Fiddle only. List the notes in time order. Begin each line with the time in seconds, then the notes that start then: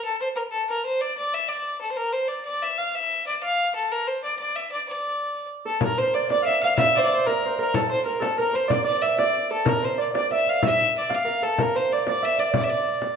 0.05 A4
0.21 C5
0.36 A#4
0.51 A4
0.69 A#4
0.86 C5
1.01 D5
1.18 D5
1.34 E5
1.48 D5
1.81 A4
1.92 C5
1.96 A#4
2.13 C5
2.28 D5
2.45 D5
2.62 E5
2.78 F5
2.95 E5
3.26 D5
3.43 F5
3.75 A4
3.92 A#4
4.07 C5
4.24 D5
4.39 D5
4.56 E5
4.72 D5
4.88 D5
5.66 A4
5.82 A#4
5.98 C5
6.14 D5
6.31 D5
6.42 E5 F5
6.63 F5
6.78 E5
6.95 C5 D5
7.04 D5
7.11 C5
7.26 A#4
7.60 A#4
7.75 A4
7.91 C5
8.05 A#4
8.22 A4
8.39 A#4
8.55 C5
8.71 D5
8.85 D5
9.02 E5
9.19 D5
9.52 A4
9.68 A#4
9.85 C5
10.01 D5
10.17 D5
10.32 E5
10.49 F5
10.66 E5
10.98 D5
11.14 F5
11.43 A4
11.61 A#4
11.76 C5
11.93 D5
12.09 D5
12.25 E5
12.39 D5
12.56 D5
12.63 E5
12.70 D5